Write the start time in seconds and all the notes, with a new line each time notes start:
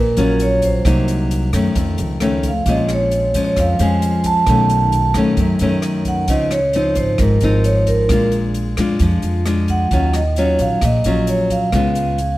Already playing: A#1 A#2 A#4
0.17 A#1 F#3 C#4 F4, closed hi-hat
0.40 C#5, closed hi-hat
0.62 C5, kick, closed hi-hat
0.85 C2 C3 F#3 A#3 D#4, kick, cross-stick, closed hi-hat
1.08 closed hi-hat
1.31 closed hi-hat
1.53 F#2 D#3 A3 C#4, kick, cross-stick, closed hi-hat
1.75 F2, kick, closed hi-hat
1.98 C#2, closed hi-hat
2.20 D#3 A3 C#4, cross-stick, closed hi-hat
2.43 kick, closed hi-hat
2.48 F5
2.66 A#1 A#2 F3 G#3 C#4 D#5, kick, closed hi-hat
2.89 cross-stick, closed hi-hat
2.93 C#5
3.11 closed hi-hat
3.34 F2 F3 G#3 C#4, kick, closed hi-hat
3.45 C#5
3.56 F2 F5, kick, cross-stick, closed hi-hat
3.79 F2 F3 G#3 C#4 G#5, closed hi-hat
4.02 closed hi-hat
4.24 A5, kick, closed hi-hat
4.46 B1 B2 D#3 A3 C#4, kick, cross-stick, closed hi-hat
4.69 closed hi-hat
4.92 closed hi-hat
5.14 F#2 D#3 A3 C#4, kick, cross-stick, closed hi-hat
5.37 F#2, kick, closed hi-hat
5.59 F#2 D#3 A3 C#4, closed hi-hat
5.82 cross-stick, closed hi-hat
6.05 F#5, kick, closed hi-hat
6.28 C#2 C#3 F3 C4 D#4 D#5, kick, closed hi-hat
6.51 C#5, cross-stick, closed hi-hat
6.73 F3 C4 D#4, closed hi-hat
6.95 G#1 C5, kick, closed hi-hat
7.18 G#1 G#2 A#4, kick, cross-stick, closed hi-hat
7.41 G#1 F3 C4 D#4, closed hi-hat
7.64 C#5, closed hi-hat
7.87 A#4, kick, closed hi-hat
8.09 A#1 A#2 G#3 D4 F4, kick, cross-stick, closed hi-hat
8.32 closed hi-hat
8.54 closed hi-hat
8.77 F2 G#3 D4 F4, kick, cross-stick, closed hi-hat
8.99 F2 F3, kick, closed hi-hat
9.22 F2, closed hi-hat
9.46 G#3 D4 F4, cross-stick, closed hi-hat
9.68 F#5, kick, closed hi-hat
9.91 D#2 D#3 F#3 C#4 F4, kick, closed hi-hat
10.13 D#5, cross-stick, closed hi-hat
10.36 F#3 C#4 F4 C#5, closed hi-hat
10.59 A#1 F5, kick, closed hi-hat
10.81 A#1 A#2 D#5, kick, cross-stick, closed hi-hat
11.04 A#1 F#3 C#4 F4, closed hi-hat
11.27 C#5, closed hi-hat
11.50 F5, kick, closed hi-hat
11.72 C#2 C#3 G#3 B3 F4, kick, cross-stick, closed hi-hat
11.95 closed hi-hat
12.18 closed hi-hat